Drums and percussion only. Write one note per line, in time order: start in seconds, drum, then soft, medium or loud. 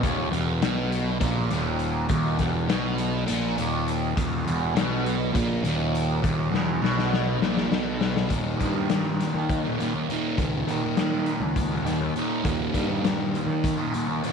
0.03 kick loud
0.03 closed hi-hat medium
0.33 closed hi-hat medium
0.62 snare loud
0.62 closed hi-hat medium
0.92 closed hi-hat medium
1.21 kick loud
1.21 closed hi-hat medium
1.50 snare soft
1.50 closed hi-hat medium
1.79 closed hi-hat medium
2.09 kick loud
2.09 closed hi-hat medium
2.39 kick medium
2.39 snare soft
2.39 closed hi-hat medium
2.69 snare loud
2.69 closed hi-hat medium
2.98 closed hi-hat medium
3.28 snare soft
3.28 closed hi-hat medium
3.58 closed hi-hat medium
3.88 closed hi-hat medium
4.17 kick loud
4.17 closed hi-hat medium
4.47 closed hi-hat medium
4.76 snare loud
4.76 closed hi-hat medium
5.06 closed hi-hat medium
5.35 kick loud
5.35 closed hi-hat medium
5.65 snare soft
5.65 closed hi-hat medium
5.95 closed hi-hat medium
6.24 kick loud
6.24 closed hi-hat medium
6.54 snare medium
6.84 snare medium
6.99 snare medium
7.13 snare medium
7.42 snare medium
7.57 snare medium
7.72 snare medium
8.01 snare medium
8.16 snare medium
8.30 kick loud
8.30 closed hi-hat medium
8.60 kick medium
8.60 closed hi-hat medium
8.89 snare loud
8.89 closed hi-hat medium
9.20 snare soft
9.20 closed hi-hat medium
9.49 kick loud
9.49 closed hi-hat medium
9.80 snare soft
9.80 closed hi-hat medium
10.10 closed hi-hat medium
10.38 kick loud
10.38 closed hi-hat medium
10.68 closed hi-hat medium
10.97 snare loud
10.97 closed hi-hat medium
11.26 closed hi-hat medium
11.56 kick loud
11.56 closed hi-hat medium
11.86 snare soft
11.86 closed hi-hat medium
12.16 closed hi-hat medium
12.45 kick loud
12.45 closed hi-hat medium
12.74 kick medium
12.74 closed hi-hat medium
13.04 snare loud
13.04 closed hi-hat medium
13.35 closed hi-hat medium
13.64 kick loud
13.64 closed hi-hat medium
13.94 closed hi-hat medium
14.24 closed hi-hat medium